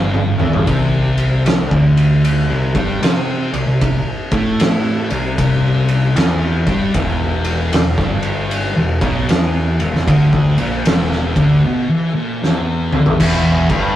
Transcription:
Already playing: picked electric bass G1, distorted electric guitar G2
0.14 high tom
0.38 picked electric bass E2, distorted electric guitar E3, mid tom
0.53 picked electric bass G1, distorted electric guitar G2, floor tom
0.67 picked electric bass C2, distorted electric guitar C3, kick, ride
1.18 ride
1.46 picked electric bass C2, distorted electric guitar C3, snare, ride
1.71 picked electric bass D2, distorted electric guitar D3, kick
1.97 ride
2.25 ride
2.49 picked electric bass C2, distorted electric guitar C3
2.75 picked electric bass G2, distorted electric guitar G3, kick, ride
3.02 picked electric bass C3, distorted electric guitar C4, snare, ride
3.53 picked electric bass C2, distorted electric guitar C3, ride
3.67 picked electric bass C2, distorted electric guitar C3
3.81 kick, ride
4.32 picked electric bass A2, distorted electric guitar A3, kick, ride
4.60 snare, ride
5.10 picked electric bass C2, distorted electric guitar C3, ride
5.38 picked electric bass C2, distorted electric guitar C3, kick, ride
5.89 ride
6.16 picked electric bass E2, distorted electric guitar E3, snare, ride
6.67 picked electric bass G2, distorted electric guitar G3, kick, ride
6.94 picked electric bass E1, distorted electric guitar E2, kick, ride
7.45 ride
7.73 picked electric bass E1, distorted electric guitar E2, snare, ride
7.98 picked electric bass G1, distorted electric guitar G2, kick, snare
8.23 ride
8.51 ride
8.76 picked electric bass E1, distorted electric guitar E2
9.01 picked electric bass B1, distorted electric guitar B2, kick, ride
9.29 picked electric bass E2, distorted electric guitar E3, snare, ride
9.79 picked electric bass E1, distorted electric guitar E2, ride
9.93 picked electric bass E1, distorted electric guitar E2, snare
10.07 picked electric bass D2, distorted electric guitar D3, kick, ride
10.33 picked electric bass D2, distorted electric guitar D3, kick
10.58 picked electric bass A#1, distorted electric guitar A#2, ride
10.85 picked electric bass E1, distorted electric guitar E2, snare, ride
11.12 snare
11.36 picked electric bass D2, distorted electric guitar D3, kick, ride
11.65 distorted electric guitar B2
11.90 distorted electric guitar E3
12.15 distorted electric guitar A#2
12.42 distorted electric guitar E2, snare
12.92 distorted electric guitar D3, mid tom
13.06 distorted electric guitar E2, floor tom
13.19 picked electric bass E1, distorted electric guitar E2, kick, crash
13.69 picked electric bass G1, distorted electric guitar G2, kick, crash

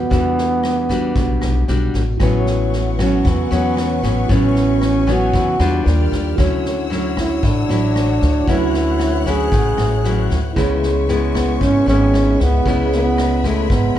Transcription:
Already playing: trombone B3
0.10 upright bass E2, nylon-string guitar E3 G3 D4 F#4, kick, snare
0.38 snare
0.63 cross-stick, snare
0.89 nylon-string guitar G3 D4 F#4, kick, snare
1.15 upright bass B1, nylon-string guitar B2, kick, snare
1.41 upright bass B1, cross-stick, snare
1.67 upright bass B1, nylon-string guitar G3 D4 F#4, snare
1.94 upright bass A1, kick, snare
2.17 upright bass A1, tine electric piano E4 F#4, kick, cross-stick, snare
2.21 nylon-string guitar A2 F#3 B3 C#4, tine electric piano B4 C#5, string section B4 F#5 C#6
2.46 snare
2.73 snare
2.99 nylon-string guitar F#3 B3 C#4, trombone C#4, kick, cross-stick, snare
3.25 upright bass E2, nylon-string guitar E3, kick, snare
3.29 trombone B3
3.51 upright bass E2, nylon-string guitar F#3 B3 C#4, snare
3.77 cross-stick, snare
4.03 upright bass A1, nylon-string guitar F#3 B3 C#4, kick, snare
4.26 upright bass A1, nylon-string guitar A2 F#3 B3, tine electric piano E4 F#4, string section G#5, kick, snare
4.30 nylon-string guitar C#4, trombone C#4, tine electric piano B4 C#5
4.55 snare
4.81 cross-stick, snare
5.07 nylon-string guitar F#3 B3 C#4, kick, snare
5.11 trombone F#4
5.33 upright bass E2, nylon-string guitar E3, kick, snare
5.59 upright bass E2, nylon-string guitar G3 D4 F4, cross-stick, snare
5.84 upright bass D#2, tine electric piano F4 G4 A#4 D5, string section D5 G5 F6, snare
6.12 upright bass D#2, kick, snare
6.34 upright bass D2, nylon-string guitar D3, tine electric piano E4 F#4 A4, string section C#5 F#5 E6, kick, cross-stick, snare
6.39 nylon-string guitar F#3 C#4 E4, tine electric piano C#5
6.65 snare
6.90 nylon-string guitar F#3 C#4 E4, snare
7.17 trombone E4, kick, cross-stick, snare
7.43 upright bass A1, nylon-string guitar A2, trombone D4, kick, snare
7.69 upright bass A1, nylon-string guitar F#3 E4, snare
7.96 cross-stick, snare
8.21 upright bass D2, kick, snare
8.44 upright bass D2, tine electric piano A3 E4 F#4, string section F#6, kick, snare
8.48 nylon-string guitar D3 F#3 C#4 E4, trombone E4, tine electric piano B4
8.74 snare
8.99 cross-stick, snare
9.26 nylon-string guitar F#3 C#4 E4, trombone G#4, kick, snare
9.51 upright bass A1, nylon-string guitar A2, kick, snare
9.78 upright bass A1, cross-stick, snare
10.04 nylon-string guitar F#3 C#4 E4, snare
10.30 upright bass D2, kick, snare
10.53 upright bass C#2, nylon-string guitar C#3 G#3 B3, tine electric piano E4 G#4 B4, string section B4 E5 C#6, kick, cross-stick, snare
10.57 nylon-string guitar E4, tine electric piano C#5
10.83 snare
11.08 nylon-string guitar G#3 B3 E4, snare
11.35 trombone B3, kick, cross-stick, snare
11.61 upright bass G#1, nylon-string guitar G#2, trombone C#4, kick, snare
11.86 upright bass G#1, nylon-string guitar G#3 B3 E4, trombone C#4, snare
12.14 cross-stick, snare
12.39 upright bass C#2, trombone B3, kick, snare
12.62 upright bass C#2, nylon-string guitar C#3 G#3, tine electric piano E4 G#4 B4, string section B5, kick
12.66 nylon-string guitar B3 E4, tine electric piano C#5, snare
12.92 trombone B3, snare
13.18 cross-stick, snare
13.44 nylon-string guitar G#3 B3 E4, trombone A3, kick, snare
13.70 upright bass G#1, nylon-string guitar G#2, trombone B3, kick, snare
13.95 upright bass G#1

